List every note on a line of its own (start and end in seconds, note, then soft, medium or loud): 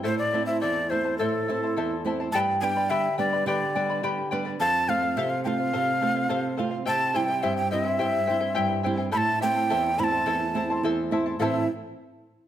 0.03 0.60 A2 medium
0.03 0.32 E4 medium
0.03 0.33 A4 medium
0.03 0.32 C5 medium
0.03 0.18 C5 medium
0.03 0.31 E5 medium
0.03 0.33 A5 medium
0.19 0.45 D5 medium
0.33 0.79 A3 medium
0.33 0.79 C4 soft
0.33 0.48 E4 medium
0.33 0.80 E4 medium
0.33 0.47 C5 medium
0.33 0.47 E5 medium
0.33 0.47 A5 medium
0.46 0.61 E4 soft
0.46 0.61 C5 soft
0.46 0.60 E5 loud
0.46 0.61 A5 medium
0.61 1.18 E2 medium
0.61 0.90 E4 medium
0.61 0.90 A4 medium
0.61 0.90 C5 medium
0.61 0.91 D5 loud
0.61 0.89 E5 medium
0.61 0.90 A5 medium
0.90 1.14 A3 medium
0.90 1.14 C4 soft
0.90 1.04 E4 medium
0.90 1.14 E4 medium
0.90 1.17 C5 medium
0.90 1.04 C5 medium
0.90 1.04 E5 medium
0.90 1.03 A5 medium
1.04 1.19 E4 soft
1.04 1.19 C5 soft
1.04 1.19 A5 medium
1.18 1.75 A2 medium
1.18 1.47 E4 medium
1.18 2.00 A4 medium
1.18 1.47 A4 medium
1.18 1.48 C5 medium
1.18 1.47 E5 medium
1.18 1.48 A5 medium
1.48 1.94 A3 soft
1.48 1.94 C4 soft
1.48 1.62 E4 medium
1.48 1.94 E4 medium
1.48 1.62 C5 medium
1.48 1.62 E5 medium
1.48 1.62 A5 medium
1.63 1.76 E4 soft
1.63 1.77 C5 soft
1.63 1.76 A5 soft
1.77 2.32 E2 medium
1.77 2.05 E4 medium
1.77 2.04 A4 medium
1.77 2.05 C5 medium
1.77 2.04 E5 medium
1.77 2.05 A5 medium
2.05 2.27 A3 soft
2.05 2.27 C4 soft
2.05 2.28 E4 medium
2.05 2.19 E4 medium
2.05 2.19 C5 medium
2.05 2.19 E5 medium
2.05 2.19 A5 medium
2.20 2.34 E4 soft
2.20 2.34 C5 medium
2.20 2.33 A5 medium
2.32 2.88 G2 medium
2.32 2.62 G4 medium
2.32 2.62 B4 medium
2.32 2.62 D5 loud
2.32 2.61 G5 medium
2.32 2.39 A5 loud
2.32 2.62 B5 medium
2.61 3.07 G3 medium
2.61 3.07 B3 medium
2.61 3.07 D4 medium
2.61 2.76 B4 medium
2.61 2.76 D5 medium
2.61 2.76 G5 medium
2.61 2.92 G5 loud
2.61 2.65 G#5 medium
2.61 2.75 B5 medium
2.76 2.89 B4 soft
2.76 2.90 D5 medium
2.76 2.90 B5 medium
2.90 3.45 D3 medium
2.90 3.18 G4 medium
2.90 3.17 B4 medium
2.90 3.17 D5 medium
2.90 3.18 E5 medium
2.90 3.17 G5 medium
2.90 3.18 B5 medium
3.18 3.63 G3 medium
3.18 3.64 B3 soft
3.18 3.64 D4 medium
3.18 3.32 B4 medium
3.18 3.32 D5 medium
3.18 3.45 D5 medium
3.18 3.32 G5 medium
3.18 3.31 B5 medium
3.33 3.46 B4 soft
3.33 3.46 D5 soft
3.33 3.46 B5 medium
3.46 4.01 D3 medium
3.46 3.75 G4 medium
3.46 3.75 B4 medium
3.46 3.99 D5 medium
3.46 3.75 D5 medium
3.46 3.74 G5 medium
3.46 3.75 B5 medium
3.75 4.20 G3 medium
3.75 4.21 B3 soft
3.75 4.21 D4 medium
3.75 3.89 B4 medium
3.75 3.89 D5 medium
3.75 3.89 G5 medium
3.75 3.88 B5 medium
3.90 4.03 B4 soft
3.90 4.03 D5 medium
3.90 4.03 B5 medium
4.03 4.58 D3 medium
4.03 4.31 G4 medium
4.03 4.31 B4 medium
4.03 4.31 D5 medium
4.03 4.30 G5 medium
4.03 4.31 B5 loud
4.31 4.54 G3 medium
4.31 4.55 B3 soft
4.31 4.55 D4 medium
4.31 4.46 B4 medium
4.31 4.45 D5 medium
4.31 4.45 G5 medium
4.31 4.44 B5 medium
4.45 4.60 B4 soft
4.45 4.60 D5 medium
4.45 4.59 B5 medium
4.60 5.15 F2 medium
4.60 4.88 A4 medium
4.60 4.88 C5 medium
4.60 4.89 F5 loud
4.60 4.90 A5 loud
4.89 5.34 A3 medium
4.89 5.34 C4 medium
4.89 5.34 F4 medium
4.89 5.03 A4 medium
4.89 5.02 C5 medium
4.89 5.19 F5 loud
4.89 5.01 F5 medium
5.02 5.16 C5 soft
5.02 5.16 F5 medium
5.17 5.71 C3 medium
5.17 5.44 A4 medium
5.17 5.44 C5 medium
5.17 5.31 E5 medium
5.17 5.45 F5 loud
5.30 5.43 F5 medium
5.44 5.90 A3 medium
5.44 5.91 C4 soft
5.44 5.91 F4 medium
5.44 5.59 A4 medium
5.44 5.59 C5 medium
5.44 5.57 F5 medium
5.44 6.54 F5 medium
5.44 5.49 G5 medium
5.58 5.72 C5 soft
5.58 5.73 F5 medium
5.73 6.29 C3 medium
5.73 6.00 A4 medium
5.73 6.01 C5 medium
5.73 6.02 F5 medium
6.01 6.47 A3 medium
6.01 6.47 C4 soft
6.01 6.47 F4 medium
6.01 6.15 A4 medium
6.01 6.16 C5 medium
6.01 6.15 F5 medium
6.16 6.29 C5 medium
6.16 6.29 F5 medium
6.29 6.85 C3 medium
6.29 6.56 A4 medium
6.29 6.56 C5 loud
6.29 6.57 F5 loud
6.57 6.81 A3 medium
6.57 6.81 C4 soft
6.57 6.81 F4 medium
6.57 6.72 A4 medium
6.57 6.71 C5 medium
6.57 6.70 F5 medium
6.71 6.85 C5 soft
6.71 6.85 F5 medium
6.85 7.42 C3 medium
6.85 7.12 E4 medium
6.85 7.14 G4 medium
6.85 7.13 C5 medium
6.85 7.12 E5 medium
6.85 7.13 G5 medium
6.85 7.18 A5 loud
7.13 7.60 G3 medium
7.13 7.60 C4 soft
7.13 7.28 E4 medium
7.13 7.61 E4 medium
7.13 7.27 C5 medium
7.13 7.28 E5 medium
7.13 7.27 G5 medium
7.13 7.45 G5 loud
7.28 7.42 E4 soft
7.28 7.42 C5 soft
7.28 7.42 G5 medium
7.42 7.98 G2 medium
7.42 7.70 E4 medium
7.42 7.71 G4 medium
7.42 7.70 C5 medium
7.42 7.70 E5 medium
7.42 7.57 E5 medium
7.42 7.71 G5 medium
7.57 7.70 G5 loud
7.71 8.18 G3 medium
7.71 8.18 C4 medium
7.71 7.85 E4 medium
7.71 8.18 E4 medium
7.71 7.84 C5 medium
7.71 7.88 D#5 medium
7.71 7.85 E5 medium
7.71 7.83 G5 medium
7.84 7.98 E4 soft
7.84 7.98 C5 soft
7.84 8.81 E5 medium
7.84 7.98 G5 medium
7.99 8.55 G2 medium
7.99 8.26 E4 medium
7.99 8.28 G4 medium
7.99 8.26 C5 loud
7.99 8.25 E5 medium
7.99 8.27 G5 medium
8.26 8.74 G3 medium
8.26 8.40 E4 medium
8.26 8.75 E4 medium
8.26 8.40 C5 medium
8.26 8.41 E5 medium
8.26 8.39 G5 medium
8.30 8.75 C4 soft
8.40 8.54 E4 medium
8.40 8.54 C5 medium
8.40 8.55 G5 medium
8.55 9.12 G2 medium
8.55 8.83 E4 loud
8.55 8.84 G4 medium
8.55 8.83 C5 loud
8.55 8.82 E5 loud
8.55 8.83 G5 loud
8.83 9.08 G3 medium
8.83 9.08 C4 soft
8.83 8.98 E4 medium
8.83 9.08 E4 medium
8.83 8.97 C5 medium
8.83 8.98 E5 medium
8.83 8.96 G5 medium
8.97 9.11 E4 soft
8.97 9.11 C5 medium
8.97 9.12 G5 medium
9.11 9.69 A2 medium
9.11 9.40 E4 medium
9.11 9.40 A4 medium
9.11 9.40 C5 medium
9.11 9.40 E5 medium
9.11 9.41 A5 medium
9.11 9.18 B5 loud
9.17 9.39 A5 loud
9.41 9.88 A3 medium
9.41 9.88 C4 soft
9.41 9.56 E4 medium
9.41 9.88 E4 medium
9.41 9.55 C5 medium
9.41 9.55 E5 medium
9.41 10.01 G5 loud
9.41 9.54 A5 medium
9.55 9.69 E4 soft
9.55 9.69 C5 medium
9.55 9.69 A5 medium
9.70 10.25 E2 medium
9.70 9.98 E4 medium
9.70 9.97 A4 medium
9.70 9.97 C5 medium
9.70 9.96 E5 medium
9.70 9.98 A5 medium
9.98 10.44 A3 medium
9.98 10.44 C4 medium
9.98 10.12 E4 medium
9.98 10.44 E4 medium
9.98 10.11 C5 medium
9.98 10.12 E5 medium
9.98 10.10 A5 medium
9.98 10.05 B5 loud
10.04 10.84 A5 loud
10.11 10.25 E4 soft
10.11 10.26 C5 soft
10.11 10.26 A5 medium
10.26 10.81 E2 medium
10.26 10.54 E4 medium
10.26 10.54 A4 medium
10.26 10.55 C5 medium
10.26 10.54 E5 medium
10.26 10.55 A5 loud
10.55 11.00 A3 medium
10.55 11.00 C4 soft
10.55 10.69 E4 medium
10.55 11.00 E4 medium
10.55 10.69 C5 medium
10.55 10.69 E5 medium
10.55 10.69 A5 medium
10.70 10.83 E4 medium
10.70 10.84 C5 medium
10.70 10.84 A5 medium
10.83 11.38 E2 medium
10.83 11.11 E4 medium
10.83 11.12 A4 medium
10.83 11.12 C5 loud
10.83 11.11 E5 loud
10.83 11.12 A5 loud
11.11 11.34 A3 medium
11.11 11.35 C4 soft
11.11 11.35 E4 medium
11.11 11.26 E4 medium
11.11 11.25 C5 medium
11.11 11.26 E5 medium
11.11 11.25 A5 medium
11.26 11.40 E4 medium
11.26 11.40 C5 medium
11.26 11.40 A5 medium
11.40 11.66 A2 medium
11.40 11.67 E3 medium
11.40 11.67 A3 medium
11.40 11.67 C4 medium
11.40 11.63 E4 medium
11.40 11.67 E4 medium
11.40 11.63 A4 medium
11.40 11.64 C5 medium
11.40 11.68 C5 medium
11.40 11.63 E5 medium
11.40 11.66 E5 medium
11.40 11.44 F5 medium
11.40 11.64 A5 loud